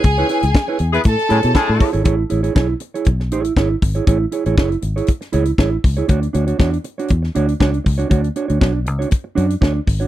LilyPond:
<<
  \new Staff \with { instrumentName = "Violin section" } { \time 4/4 \key a \major \tempo 4 = 119 <gis' gis''>4. r8 <a' a''>4. r8 | r1 | r1 | r1 |
r1 | }
  \new Staff \with { instrumentName = "Clean electric guitar" } { \time 4/4 \key a \major r16 <e' b' cis''>16 <e' b' cis''>16 r8 <e' b' cis''>16 r4 <e' gis' cis''>16 <e' gis' cis''>16 r8 <e' gis' cis''>16 <e' gis' cis''>16 | <e' gis' cis''>16 r16 <e' gis' cis''>16 <e' gis' cis''>16 <e' gis' cis''>16 r8 <e' gis' cis''>16 r8 <e' gis' cis''>8 <e' gis' cis''>16 r8 <e' gis' cis''>16 | <e' gis' cis''>16 r16 <e' gis' cis''>16 <e' gis' cis''>16 <e' gis' cis''>16 r8 <e' gis' cis''>16 r8 <e' gis' cis''>16 r16 <e' gis' cis''>16 r8 <e' gis' cis''>16 | <d' fis' cis''>16 r16 <d' fis' cis''>16 <d' fis' cis''>16 <d' fis' cis''>16 r8 <d' fis' cis''>16 r8 <d' fis' cis''>16 r16 <d' fis' cis''>16 r8 <d' fis' cis''>16 |
<d' fis' cis''>16 r16 <d' fis' cis''>16 <d' fis' cis''>16 <d' fis' cis''>16 r8 <d' fis' cis''>16 r8 <d' fis' cis''>16 r16 <d' fis' cis''>16 r8 <d' fis' cis''>16 | }
  \new Staff \with { instrumentName = "Horn section" } { \time 4/4 \key a \major r4. r16 <b e' gis' b'>16 r8 <gis cis' e' gis'>16 r16 <gis cis' e' gis'>8. r16 | r1 | r1 | r1 |
r1 | }
  \new Staff \with { instrumentName = "Fingered electric bass" } { \clef bass \time 4/4 \key a \major cis,8 r16 cis,16 r8 e,8 a,16 r16 a,16 b,16 r16 a,16 r16 gis,,16 | a,,8 a,,8 b,,8 r8 b,,8 a,,8 gis,,8 gis,,8 | a,,8 r16 a,,16 fis,,8 gis,,8 r8 cis,8 a,,8 cis,8 | d,8 d,8 e,8 r8 e,8 d,8 cis,8 cis,8 |
d,8 r16 d,16 b,,8 cis,8 r8 fis,8 d,8 gis,,8 | }
  \new DrumStaff \with { instrumentName = "Drums" } \drummode { \time 4/4 <hh bd>8 hh16 hh16 <bd sn>8 hh16 hh16 <hh bd>16 hh16 hh16 hh16 <bd sn>8 <hho bd>16 hh16 | <hh bd>8 hh16 hh16 <bd sn>8 hh16 hh16 <hh bd>16 sn16 hh16 hh16 <bd sn>8 <hho bd>16 hh16 | <hh bd>8 hh16 hh16 <bd sn>16 hh16 hh16 hh16 <hh bd>16 <hh sn>16 hh16 hh16 <bd sn>8 <hho bd>16 hh16 | <hh bd>16 hh16 hh16 hh16 <bd sn>16 hh16 hh16 hh16 <hh bd>16 sn16 hh16 hh16 <bd sn>16 hh16 <hho bd>16 hh16 |
<hh bd>16 hh16 hh16 hh16 <bd sn>8 hh16 hh16 <hh bd>8 hh16 hh16 <bd sn>8 <hho bd>16 hh16 | }
>>